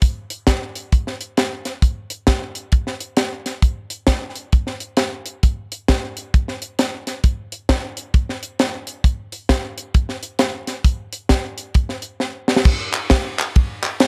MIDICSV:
0, 0, Header, 1, 2, 480
1, 0, Start_track
1, 0, Tempo, 451128
1, 20, Time_signature, 4, 2, 24, 8
1, 14973, End_track
2, 0, Start_track
2, 0, Title_t, "Drums"
2, 19, Note_on_c, 9, 42, 80
2, 22, Note_on_c, 9, 36, 88
2, 125, Note_off_c, 9, 42, 0
2, 128, Note_off_c, 9, 36, 0
2, 321, Note_on_c, 9, 42, 66
2, 428, Note_off_c, 9, 42, 0
2, 497, Note_on_c, 9, 38, 102
2, 501, Note_on_c, 9, 42, 86
2, 506, Note_on_c, 9, 36, 80
2, 603, Note_off_c, 9, 38, 0
2, 608, Note_off_c, 9, 42, 0
2, 613, Note_off_c, 9, 36, 0
2, 803, Note_on_c, 9, 42, 59
2, 909, Note_off_c, 9, 42, 0
2, 982, Note_on_c, 9, 42, 64
2, 985, Note_on_c, 9, 36, 87
2, 1089, Note_off_c, 9, 42, 0
2, 1092, Note_off_c, 9, 36, 0
2, 1140, Note_on_c, 9, 38, 32
2, 1247, Note_off_c, 9, 38, 0
2, 1283, Note_on_c, 9, 42, 57
2, 1390, Note_off_c, 9, 42, 0
2, 1462, Note_on_c, 9, 42, 86
2, 1466, Note_on_c, 9, 38, 91
2, 1568, Note_off_c, 9, 42, 0
2, 1572, Note_off_c, 9, 38, 0
2, 1759, Note_on_c, 9, 42, 64
2, 1760, Note_on_c, 9, 38, 27
2, 1865, Note_off_c, 9, 42, 0
2, 1866, Note_off_c, 9, 38, 0
2, 1939, Note_on_c, 9, 42, 78
2, 1940, Note_on_c, 9, 36, 89
2, 2046, Note_off_c, 9, 42, 0
2, 2047, Note_off_c, 9, 36, 0
2, 2236, Note_on_c, 9, 42, 64
2, 2342, Note_off_c, 9, 42, 0
2, 2413, Note_on_c, 9, 38, 103
2, 2417, Note_on_c, 9, 42, 82
2, 2424, Note_on_c, 9, 36, 86
2, 2519, Note_off_c, 9, 38, 0
2, 2524, Note_off_c, 9, 42, 0
2, 2530, Note_off_c, 9, 36, 0
2, 2714, Note_on_c, 9, 42, 57
2, 2821, Note_off_c, 9, 42, 0
2, 2892, Note_on_c, 9, 42, 60
2, 2899, Note_on_c, 9, 36, 91
2, 2998, Note_off_c, 9, 42, 0
2, 3006, Note_off_c, 9, 36, 0
2, 3052, Note_on_c, 9, 38, 30
2, 3158, Note_off_c, 9, 38, 0
2, 3197, Note_on_c, 9, 42, 58
2, 3304, Note_off_c, 9, 42, 0
2, 3369, Note_on_c, 9, 42, 85
2, 3373, Note_on_c, 9, 38, 86
2, 3475, Note_off_c, 9, 42, 0
2, 3479, Note_off_c, 9, 38, 0
2, 3679, Note_on_c, 9, 42, 65
2, 3680, Note_on_c, 9, 38, 27
2, 3786, Note_off_c, 9, 42, 0
2, 3787, Note_off_c, 9, 38, 0
2, 3856, Note_on_c, 9, 36, 89
2, 3856, Note_on_c, 9, 42, 79
2, 3962, Note_off_c, 9, 42, 0
2, 3963, Note_off_c, 9, 36, 0
2, 4152, Note_on_c, 9, 42, 62
2, 4258, Note_off_c, 9, 42, 0
2, 4327, Note_on_c, 9, 38, 109
2, 4331, Note_on_c, 9, 42, 85
2, 4339, Note_on_c, 9, 36, 82
2, 4433, Note_off_c, 9, 38, 0
2, 4438, Note_off_c, 9, 42, 0
2, 4445, Note_off_c, 9, 36, 0
2, 4634, Note_on_c, 9, 42, 58
2, 4741, Note_off_c, 9, 42, 0
2, 4814, Note_on_c, 9, 42, 61
2, 4819, Note_on_c, 9, 36, 98
2, 4920, Note_off_c, 9, 42, 0
2, 4925, Note_off_c, 9, 36, 0
2, 4966, Note_on_c, 9, 38, 31
2, 5073, Note_off_c, 9, 38, 0
2, 5111, Note_on_c, 9, 42, 56
2, 5218, Note_off_c, 9, 42, 0
2, 5286, Note_on_c, 9, 42, 86
2, 5290, Note_on_c, 9, 38, 90
2, 5392, Note_off_c, 9, 42, 0
2, 5396, Note_off_c, 9, 38, 0
2, 5593, Note_on_c, 9, 42, 67
2, 5699, Note_off_c, 9, 42, 0
2, 5778, Note_on_c, 9, 42, 84
2, 5782, Note_on_c, 9, 36, 89
2, 5884, Note_off_c, 9, 42, 0
2, 5888, Note_off_c, 9, 36, 0
2, 6084, Note_on_c, 9, 42, 64
2, 6191, Note_off_c, 9, 42, 0
2, 6261, Note_on_c, 9, 38, 109
2, 6265, Note_on_c, 9, 42, 82
2, 6268, Note_on_c, 9, 36, 84
2, 6368, Note_off_c, 9, 38, 0
2, 6372, Note_off_c, 9, 42, 0
2, 6374, Note_off_c, 9, 36, 0
2, 6563, Note_on_c, 9, 42, 58
2, 6669, Note_off_c, 9, 42, 0
2, 6746, Note_on_c, 9, 42, 59
2, 6748, Note_on_c, 9, 36, 98
2, 6853, Note_off_c, 9, 42, 0
2, 6854, Note_off_c, 9, 36, 0
2, 6897, Note_on_c, 9, 38, 32
2, 7004, Note_off_c, 9, 38, 0
2, 7042, Note_on_c, 9, 42, 60
2, 7148, Note_off_c, 9, 42, 0
2, 7222, Note_on_c, 9, 42, 88
2, 7226, Note_on_c, 9, 38, 84
2, 7329, Note_off_c, 9, 42, 0
2, 7333, Note_off_c, 9, 38, 0
2, 7523, Note_on_c, 9, 42, 63
2, 7524, Note_on_c, 9, 38, 29
2, 7630, Note_off_c, 9, 42, 0
2, 7631, Note_off_c, 9, 38, 0
2, 7700, Note_on_c, 9, 42, 76
2, 7703, Note_on_c, 9, 36, 92
2, 7806, Note_off_c, 9, 42, 0
2, 7809, Note_off_c, 9, 36, 0
2, 8003, Note_on_c, 9, 42, 67
2, 8109, Note_off_c, 9, 42, 0
2, 8182, Note_on_c, 9, 38, 110
2, 8187, Note_on_c, 9, 36, 84
2, 8187, Note_on_c, 9, 42, 80
2, 8289, Note_off_c, 9, 38, 0
2, 8293, Note_off_c, 9, 36, 0
2, 8293, Note_off_c, 9, 42, 0
2, 8479, Note_on_c, 9, 42, 60
2, 8585, Note_off_c, 9, 42, 0
2, 8661, Note_on_c, 9, 42, 56
2, 8663, Note_on_c, 9, 36, 102
2, 8767, Note_off_c, 9, 42, 0
2, 8769, Note_off_c, 9, 36, 0
2, 8824, Note_on_c, 9, 38, 33
2, 8930, Note_off_c, 9, 38, 0
2, 8967, Note_on_c, 9, 42, 60
2, 9073, Note_off_c, 9, 42, 0
2, 9143, Note_on_c, 9, 42, 81
2, 9147, Note_on_c, 9, 38, 98
2, 9250, Note_off_c, 9, 42, 0
2, 9254, Note_off_c, 9, 38, 0
2, 9437, Note_on_c, 9, 42, 66
2, 9544, Note_off_c, 9, 42, 0
2, 9621, Note_on_c, 9, 36, 91
2, 9622, Note_on_c, 9, 42, 82
2, 9727, Note_off_c, 9, 36, 0
2, 9728, Note_off_c, 9, 42, 0
2, 9920, Note_on_c, 9, 42, 61
2, 10026, Note_off_c, 9, 42, 0
2, 10099, Note_on_c, 9, 38, 105
2, 10103, Note_on_c, 9, 42, 88
2, 10104, Note_on_c, 9, 36, 82
2, 10206, Note_off_c, 9, 38, 0
2, 10210, Note_off_c, 9, 42, 0
2, 10211, Note_off_c, 9, 36, 0
2, 10402, Note_on_c, 9, 42, 58
2, 10508, Note_off_c, 9, 42, 0
2, 10581, Note_on_c, 9, 42, 65
2, 10584, Note_on_c, 9, 36, 95
2, 10687, Note_off_c, 9, 42, 0
2, 10690, Note_off_c, 9, 36, 0
2, 10735, Note_on_c, 9, 38, 32
2, 10842, Note_off_c, 9, 38, 0
2, 10881, Note_on_c, 9, 42, 60
2, 10987, Note_off_c, 9, 42, 0
2, 11053, Note_on_c, 9, 42, 85
2, 11057, Note_on_c, 9, 38, 94
2, 11160, Note_off_c, 9, 42, 0
2, 11164, Note_off_c, 9, 38, 0
2, 11357, Note_on_c, 9, 42, 61
2, 11358, Note_on_c, 9, 38, 27
2, 11463, Note_off_c, 9, 42, 0
2, 11465, Note_off_c, 9, 38, 0
2, 11539, Note_on_c, 9, 36, 87
2, 11539, Note_on_c, 9, 42, 74
2, 11645, Note_off_c, 9, 42, 0
2, 11646, Note_off_c, 9, 36, 0
2, 11838, Note_on_c, 9, 42, 66
2, 11944, Note_off_c, 9, 42, 0
2, 12016, Note_on_c, 9, 38, 97
2, 12020, Note_on_c, 9, 42, 87
2, 12025, Note_on_c, 9, 36, 76
2, 12122, Note_off_c, 9, 38, 0
2, 12126, Note_off_c, 9, 42, 0
2, 12132, Note_off_c, 9, 36, 0
2, 12317, Note_on_c, 9, 42, 62
2, 12424, Note_off_c, 9, 42, 0
2, 12496, Note_on_c, 9, 42, 64
2, 12503, Note_on_c, 9, 36, 94
2, 12603, Note_off_c, 9, 42, 0
2, 12609, Note_off_c, 9, 36, 0
2, 12653, Note_on_c, 9, 38, 30
2, 12759, Note_off_c, 9, 38, 0
2, 12791, Note_on_c, 9, 42, 58
2, 12897, Note_off_c, 9, 42, 0
2, 12981, Note_on_c, 9, 38, 48
2, 13087, Note_off_c, 9, 38, 0
2, 13279, Note_on_c, 9, 38, 75
2, 13369, Note_off_c, 9, 38, 0
2, 13369, Note_on_c, 9, 38, 81
2, 13457, Note_on_c, 9, 49, 82
2, 13463, Note_on_c, 9, 36, 106
2, 13475, Note_off_c, 9, 38, 0
2, 13563, Note_off_c, 9, 49, 0
2, 13570, Note_off_c, 9, 36, 0
2, 13762, Note_on_c, 9, 39, 104
2, 13762, Note_on_c, 9, 51, 59
2, 13868, Note_off_c, 9, 39, 0
2, 13868, Note_off_c, 9, 51, 0
2, 13937, Note_on_c, 9, 38, 108
2, 13941, Note_on_c, 9, 51, 76
2, 13949, Note_on_c, 9, 36, 89
2, 14043, Note_off_c, 9, 38, 0
2, 14048, Note_off_c, 9, 51, 0
2, 14056, Note_off_c, 9, 36, 0
2, 14246, Note_on_c, 9, 51, 53
2, 14249, Note_on_c, 9, 39, 95
2, 14352, Note_off_c, 9, 51, 0
2, 14355, Note_off_c, 9, 39, 0
2, 14424, Note_on_c, 9, 51, 54
2, 14429, Note_on_c, 9, 36, 97
2, 14530, Note_off_c, 9, 51, 0
2, 14535, Note_off_c, 9, 36, 0
2, 14720, Note_on_c, 9, 39, 81
2, 14721, Note_on_c, 9, 51, 50
2, 14827, Note_off_c, 9, 39, 0
2, 14828, Note_off_c, 9, 51, 0
2, 14896, Note_on_c, 9, 51, 77
2, 14900, Note_on_c, 9, 38, 103
2, 14973, Note_off_c, 9, 38, 0
2, 14973, Note_off_c, 9, 51, 0
2, 14973, End_track
0, 0, End_of_file